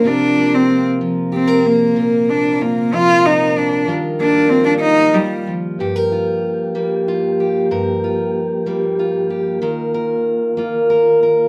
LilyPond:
<<
  \new Staff \with { instrumentName = "Steel-string acoustic guitar" } { \time 6/8 \key g \minor \tempo 4. = 63 << { f'8 bes8 f'4 g'16 bes'16 bes8 | f'4 f'4 bes'8 d'8 | f'8 bes8 f'2 | g'16 bes'16 f'4 bes8 f'8 g'8 |
bes'8 f'4 bes8 f'8 g'8 | bes'8 bes'4 f'8 bes'8 bes'8 | } \\ { <c f>4. f4. | bes,4. f4. | ees4. r8 ees8 f8 | g,4. g4. |
g,4. g4. | ees4. bes4. | } >> }
  \new Staff \with { instrumentName = "Cello" } { \time 6/8 \key g \minor d'8. c'8 r8. c'8 bes8~ | bes8 d'8 bes8 f'8 ees'8 d'8 | r8 d'8 c'16 d'16 ees'8 g8 r8 | r2. |
r2. | r2. | }
  \new Staff \with { instrumentName = "Tonewheel organ" } { \time 6/8 \key g \minor bes'2.~ | bes'2. | f'2. | g'2.~ |
g'2. | f'2. | }
  \new Staff \with { instrumentName = "Tonewheel organ" } { \clef bass \time 6/8 \key g \minor << { c'2.~ | c'2. | g2. | bes2.~ |
bes2.~ | bes2. | } \\ { <c f>2. | c2. | ees2. | f2.~ |
f2. | ees2. | } >> }
>>